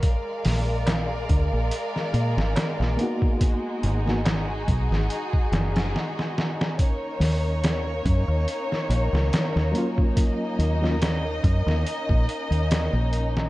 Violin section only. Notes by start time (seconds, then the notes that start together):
0.02 G#3 A#4 D5 F5
3.41 D#4 F#4 G#4
6.80 A#3 C#4 D#4 C#5
10.17 D#5